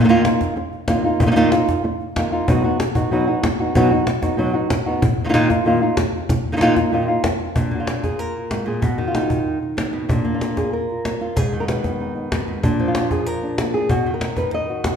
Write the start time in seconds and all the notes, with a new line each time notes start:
0.00 D#3 A#3 D#4 F4
0.04 D#3 A#3 D#4 F4
0.09 A#2 D#3 A#3 D#4 F4
0.24 A#3 D#4 F4, cajon slap
0.41 cajon bass, cajon slap
0.56 muted nylon-string guitar stroke
0.73 cajon slap
0.88 D#3 A#3 D#4 F4, cajon bass, cajon slap
1.04 A#3 D#4 F4
1.20 A#2 D#3 A#3 D#4 F4, cajon bass
1.27 D#3 A#3 D#4 F4
1.31 D#3 A#3 D#4 F4
1.36 A#2 D#3 A#3 D#4 F4
1.52 A#3 D#4 F4, cajon slap
1.69 cajon bass, cajon slap
1.84 muted nylon-string guitar stroke
2.00 cajon slap
2.16 D#3 A#3 D#4 F4, cajon bass, cajon slap
2.32 A#3 D#4 F4
2.48 B2 F#3 B3 D#4 F#4, cajon bass
2.64 B3 D#4 F#4
2.80 muted nylon-string guitar stroke, cajon slap
2.95 B3 D#4 F#4, cajon bass
3.11 B2 F#3 B3 D#4 F#4
3.27 B3 D#4 F#4, cajon slap
3.44 muted nylon-string guitar stroke, cajon bass, cajon slap
3.60 B3 D#4 F#4
3.75 B2 F#3 B3 D#4 F#4, cajon bass
3.91 B3 D#4 F#4
4.07 muted nylon-string guitar stroke, cajon slap
4.22 B3 D#4 F#4, cajon bass, cajon slap
4.37 B2 F#3 B3 D#4 F#4, cajon slap
4.54 B3 D#4 F#4, cajon slap
4.70 muted nylon-string guitar stroke, cajon bass, cajon slap
4.86 B3 D#4 F#4
5.02 muted nylon-string guitar stroke, cajon bass
5.25 D#3 A#3 D#4 F4
5.29 D#3 A#3 D#4 F4
5.34 A#2 D#3 A#3 D#4 F4, cajon slap
5.50 A#3 D#4 F4, cajon bass, cajon slap
5.65 A#2 D#3 A#3 D#4 F4
5.82 A#3 D#4 F4
5.97 muted nylon-string guitar stroke, cajon bass, cajon slap
6.29 muted nylon-string guitar stroke, cajon bass
6.52 D#3 A#3 D#4 F4
6.57 D#3 A#3 D#4 F4
6.61 A#2 D#3 A#3 D#4 F4, cajon slap
6.76 A#3 F4, cajon bass, cajon slap
6.92 A#2 D#3 A#3 D#4 F4, cajon slap
7.08 A#3 D#4 F4, cajon slap
7.24 muted nylon-string guitar stroke, cajon bass, cajon slap
7.55 A#2 D4, cajon bass
7.71 A#3 F#4
7.80 F4
7.87 cajon slap
8.04 G#4, cajon bass, cajon slap
8.19 A#4
8.51 G#2, cajon slap
8.66 A#2 G#4
8.82 B2 F#4, cajon bass
8.98 D#3
9.08 F4
9.15 D#4, cajon slap
9.30 cajon bass
9.62 D#3
9.77 D3, cajon slap
9.93 B2
10.09 A#2 D4, cajon bass
10.25 A#3
10.35 F4
10.41 cajon slap
10.57 G#4, cajon bass, cajon slap
10.73 A#4
10.90 cajon slap
11.05 cajon slap
11.21 F4
11.36 G#2 G#4, cajon bass
11.53 D#3
11.60 A#4
11.68 B4, cajon slap
11.84 B3, cajon bass, cajon slap
12.00 D#4, cajon slap
12.16 D#4, cajon slap
12.32 F#2, cajon bass, cajon slap
12.48 G#2
12.63 A#2 D4, cajon bass
12.80 F3
12.88 F4
12.95 cajon slap
13.11 G#4, cajon bass, cajon slap
13.26 A#4, cajon slap
13.42 D4, cajon slap
13.58 A#3, cajon slap
13.74 G#4
13.89 B2 F#4, cajon bass
14.06 D#3
14.14 A#4
14.21 cajon slap
14.37 B4, cajon bass, cajon slap
14.53 D#5, cajon slap
14.69 F#4, cajon slap
14.84 cajon bass, cajon slap